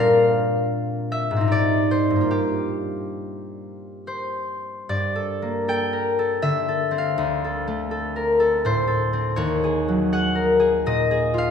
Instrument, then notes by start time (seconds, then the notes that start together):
harp
Already playing: A#2 A#3 C4 D4 A#4 D5
0.00 F5
1.12 E5
1.31 G#2
1.36 C4
1.41 D#4
1.48 G4
1.52 D5
1.91 C5
2.10 G2
2.16 A#3
2.21 F4
2.31 G4
4.07 C5
4.89 G2 D5
5.16 A4
5.42 A#3
5.68 A4 G5
5.93 A#4
6.19 A4
6.42 D3 E5
6.69 A4
6.91 C4
6.98 F5
7.18 D2
7.44 A4
7.67 A3
7.91 A4
8.16 A#4
8.40 A4
8.65 A2 C5
8.88 A4
9.13 C4
9.36 D#2 C#5
9.64 G#4
9.88 F#3
10.13 G#4 F#5
10.35 A#4
10.60 G#4
10.86 A#2 D#5
11.11 G#4
11.34 F4
11.38 F5